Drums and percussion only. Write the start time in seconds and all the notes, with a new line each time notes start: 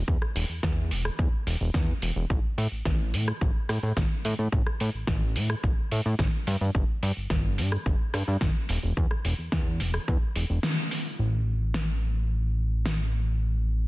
0.08 kick
0.22 cross-stick
0.36 open hi-hat
0.63 kick, snare
0.91 open hi-hat
1.05 cross-stick
1.19 kick
1.47 open hi-hat
1.74 kick, snare
2.02 open hi-hat
2.30 kick
2.58 open hi-hat
2.85 kick, snare
3.14 open hi-hat
3.28 cross-stick
3.41 kick
3.69 cross-stick, open hi-hat
3.97 kick, snare
4.25 open hi-hat
4.52 kick
4.67 cross-stick
4.80 open hi-hat
5.07 kick, snare
5.36 open hi-hat
5.50 cross-stick
5.64 kick
5.91 open hi-hat
6.19 kick, snare
6.47 open hi-hat
6.75 kick
7.03 open hi-hat
7.30 kick, snare
7.58 open hi-hat
7.72 cross-stick
7.86 kick
8.14 cross-stick, open hi-hat
8.41 kick, snare
8.69 open hi-hat
8.97 kick
9.11 cross-stick
9.25 open hi-hat
9.52 kick, snare
9.80 open hi-hat
9.94 cross-stick, open hi-hat
10.08 kick
10.36 open hi-hat
10.63 snare
10.91 open hi-hat
11.74 snare
12.86 snare